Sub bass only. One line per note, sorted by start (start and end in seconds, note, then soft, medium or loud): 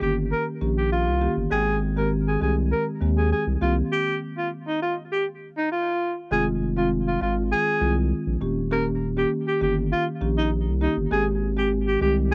0.01 0.33 G1 loud
0.61 1.08 A#1 medium
1.07 1.28 C2 medium
1.37 1.47 G1 medium
1.51 2.37 G#1 loud
2.41 2.73 C2 loud
3.01 3.33 D#2 medium
3.47 3.57 C2 medium
3.61 3.82 C2 loud
6.31 7.17 F1 loud
7.21 7.53 G#1 medium
7.81 8.13 C2 loud
8.27 8.37 A#1 medium
8.41 9.25 D#1 loud
9.61 9.93 G1 loud
10.21 10.68 A#1 medium
10.67 10.88 C2 medium
10.97 11.07 G1 medium
11.11 11.97 G#1 loud
12.01 12.33 C2 loud